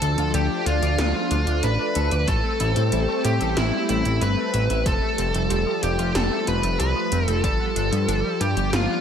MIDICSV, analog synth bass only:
0, 0, Header, 1, 2, 480
1, 0, Start_track
1, 0, Key_signature, 0, "minor"
1, 0, Tempo, 645161
1, 1696, Time_signature, 4, 2, 24, 8
1, 6701, End_track
2, 0, Start_track
2, 0, Title_t, "Analog synth bass"
2, 0, Program_c, 0, 38
2, 13, Note_on_c, 0, 38, 92
2, 124, Note_off_c, 0, 38, 0
2, 133, Note_on_c, 0, 38, 85
2, 244, Note_off_c, 0, 38, 0
2, 253, Note_on_c, 0, 38, 102
2, 364, Note_off_c, 0, 38, 0
2, 492, Note_on_c, 0, 38, 93
2, 604, Note_off_c, 0, 38, 0
2, 613, Note_on_c, 0, 38, 83
2, 724, Note_off_c, 0, 38, 0
2, 734, Note_on_c, 0, 38, 103
2, 845, Note_off_c, 0, 38, 0
2, 974, Note_on_c, 0, 38, 96
2, 1085, Note_off_c, 0, 38, 0
2, 1095, Note_on_c, 0, 38, 80
2, 1205, Note_off_c, 0, 38, 0
2, 1216, Note_on_c, 0, 33, 100
2, 1326, Note_off_c, 0, 33, 0
2, 1457, Note_on_c, 0, 38, 92
2, 1566, Note_off_c, 0, 38, 0
2, 1576, Note_on_c, 0, 38, 81
2, 1686, Note_off_c, 0, 38, 0
2, 1694, Note_on_c, 0, 33, 98
2, 1804, Note_off_c, 0, 33, 0
2, 1938, Note_on_c, 0, 33, 93
2, 2046, Note_off_c, 0, 33, 0
2, 2058, Note_on_c, 0, 45, 82
2, 2166, Note_off_c, 0, 45, 0
2, 2177, Note_on_c, 0, 33, 98
2, 2286, Note_off_c, 0, 33, 0
2, 2416, Note_on_c, 0, 45, 92
2, 2526, Note_off_c, 0, 45, 0
2, 2538, Note_on_c, 0, 33, 83
2, 2647, Note_off_c, 0, 33, 0
2, 2658, Note_on_c, 0, 33, 104
2, 2766, Note_off_c, 0, 33, 0
2, 2897, Note_on_c, 0, 33, 93
2, 3006, Note_off_c, 0, 33, 0
2, 3017, Note_on_c, 0, 33, 82
2, 3126, Note_off_c, 0, 33, 0
2, 3136, Note_on_c, 0, 31, 106
2, 3246, Note_off_c, 0, 31, 0
2, 3376, Note_on_c, 0, 33, 94
2, 3486, Note_off_c, 0, 33, 0
2, 3499, Note_on_c, 0, 33, 81
2, 3607, Note_off_c, 0, 33, 0
2, 3615, Note_on_c, 0, 29, 100
2, 3725, Note_off_c, 0, 29, 0
2, 3858, Note_on_c, 0, 29, 93
2, 3966, Note_off_c, 0, 29, 0
2, 3977, Note_on_c, 0, 29, 85
2, 4086, Note_off_c, 0, 29, 0
2, 4097, Note_on_c, 0, 29, 101
2, 4206, Note_off_c, 0, 29, 0
2, 4337, Note_on_c, 0, 29, 96
2, 4446, Note_off_c, 0, 29, 0
2, 4458, Note_on_c, 0, 29, 84
2, 4566, Note_off_c, 0, 29, 0
2, 4578, Note_on_c, 0, 29, 105
2, 4686, Note_off_c, 0, 29, 0
2, 4817, Note_on_c, 0, 29, 94
2, 4926, Note_off_c, 0, 29, 0
2, 4936, Note_on_c, 0, 29, 83
2, 5046, Note_off_c, 0, 29, 0
2, 5056, Note_on_c, 0, 36, 101
2, 5166, Note_off_c, 0, 36, 0
2, 5296, Note_on_c, 0, 29, 95
2, 5406, Note_off_c, 0, 29, 0
2, 5416, Note_on_c, 0, 29, 80
2, 5526, Note_off_c, 0, 29, 0
2, 5534, Note_on_c, 0, 31, 101
2, 5645, Note_off_c, 0, 31, 0
2, 5775, Note_on_c, 0, 31, 91
2, 5885, Note_off_c, 0, 31, 0
2, 5894, Note_on_c, 0, 43, 84
2, 6004, Note_off_c, 0, 43, 0
2, 6013, Note_on_c, 0, 31, 102
2, 6124, Note_off_c, 0, 31, 0
2, 6253, Note_on_c, 0, 43, 95
2, 6364, Note_off_c, 0, 43, 0
2, 6373, Note_on_c, 0, 31, 84
2, 6484, Note_off_c, 0, 31, 0
2, 6494, Note_on_c, 0, 31, 101
2, 6604, Note_off_c, 0, 31, 0
2, 6701, End_track
0, 0, End_of_file